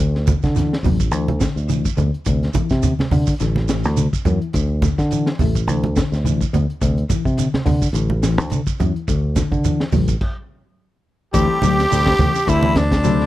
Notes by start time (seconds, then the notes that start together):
0.00 D2 D3
0.15 snare
0.27 D3, kick, closed hi-hat, high conga, low conga, shekere
0.42 D3, kick, snare, high conga, shekere
0.56 E3, snare, closed hi-hat, low conga, shekere
0.73 snare
0.83 A1 F#3, open hi-hat, high conga, low conga, shekere
0.99 kick, closed hi-hat, shekere
1.11 D2 E3, closed hi-hat, shekere
1.28 closed hi-hat, high conga
1.40 D3, kick, snare, closed hi-hat, shekere
1.56 D2, shekere
1.69 E3, closed hi-hat, high conga, shekere
1.85 kick, shekere
1.97 D2 D3, closed hi-hat, low conga, shekere
2.14 closed hi-hat
2.26 D2 C3, kick, closed hi-hat, shekere
2.43 snare, closed hi-hat
2.54 E3, kick, closed hi-hat, high conga, shekere
2.70 C3, kick, snare, shekere
2.83 D3, closed hi-hat, low conga, shekere
2.99 snare, high conga
3.11 C3 D3, open hi-hat, high conga, low conga, shekere
3.26 kick, shekere
3.40 A1 D3, snare, closed hi-hat, shekere
3.56 snare, high conga
3.68 E3, snare, closed hi-hat, shekere
3.84 D2, snare, closed hi-hat, shekere
3.97 D3, closed hi-hat, high conga, shekere
4.13 kick, shekere
4.25 F#2 E3, closed hi-hat, low conga, shekere
4.42 closed hi-hat
4.53 D2 D3, kick, closed hi-hat, shekere
4.82 D3, kick, snare, closed hi-hat, high conga, low conga, shekere
4.98 D3, kick, snare, shekere
5.11 E3, closed hi-hat, shekere
5.26 snare
5.39 A1 A3, open hi-hat, high conga, low conga, shekere
5.55 kick, closed hi-hat, shekere
5.67 D2 E3, closed hi-hat, high conga, shekere
5.84 closed hi-hat, high conga
5.96 D3, kick, snare, closed hi-hat, shekere
6.12 D2, snare, shekere
6.25 E3, closed hi-hat, high conga, shekere
6.41 kick, shekere
6.53 D2 D3, closed hi-hat, low conga, shekere
6.70 closed hi-hat
6.82 D2 C3, kick, closed hi-hat, shekere
6.98 closed hi-hat
7.09 E3, kick, closed hi-hat, high conga, shekere
7.25 C3, kick, shekere
7.38 D3, closed hi-hat, shekere
7.54 snare, high conga
7.66 C3 D3, open hi-hat, high conga, low conga, shekere
7.82 kick, shekere
7.93 A1 D3, closed hi-hat, shekere
8.10 high conga
8.23 E3, snare, closed hi-hat, shekere
8.38 D2, snare, closed hi-hat, shekere
8.50 D3, closed hi-hat, high conga, shekere
8.67 kick, shekere
8.80 F#2 E3, closed hi-hat, low conga, shekere
8.96 closed hi-hat
9.08 D2 D3, kick, closed hi-hat, shekere
9.36 D3, kick, snare, closed hi-hat, high conga, shekere
9.51 D3, kick, high conga, shekere
9.64 E3, closed hi-hat, low conga, shekere
9.80 snare
9.92 A1 F#3, open hi-hat, high conga, low conga, shekere
10.08 kick, closed hi-hat, shekere
10.21 kick, crash
11.33 D2 E3 G3 A3 C4 E4 G4, kick, closed hi-hat, shekere
11.62 D2 F#3, snare, closed hi-hat, high conga, shekere
11.79 snare, closed hi-hat, shekere
11.88 D2 G3 A3 C4 E4, closed hi-hat, shekere
12.06 kick, snare
12.19 D2 E3, closed hi-hat, high conga, low conga, shekere
12.35 snare, closed hi-hat, shekere
12.46 D2 D3 G3 A3 C4 E4, kick, closed hi-hat, shekere
12.63 E3, high conga
12.75 D4, snare, closed hi-hat, low conga, shekere
12.91 kick, snare, closed hi-hat, shekere
13.03 F#3 G3 A3 C4 E4, snare, closed hi-hat, high conga, shekere
13.20 snare